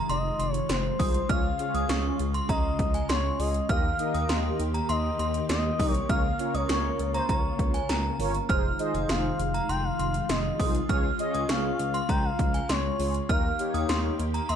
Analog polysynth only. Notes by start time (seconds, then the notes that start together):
0.99 D#4 F4 G#4 C5
1.29 C#4 F4 G#4 C#5
1.59 C#4 F4 G#4 C#5
3.39 C#4 F4 G#4 C#5
3.69 D#4 G4 A#4 D#5
3.99 D#4 G4 A#4 D#5
5.79 D#4 G4 A#4 D#5
6.09 C#4 F4 A#4 C#5
6.39 C#4 F4 A#4 C#5
8.19 C#4 F4 A#4 C#5
8.49 D#4 F4 G#4 C5
8.79 D#4 F4 G#4 C5
10.59 D#4 F4 G#4 C5
10.89 C#4 F4 G#4 C#5
11.19 C#4 F4 G#4 C#5
12.99 C#4 F4 G#4 C#5
13.29 A#3 D#4 G4 A#4
13.59 A#3 D#4 G4 C#5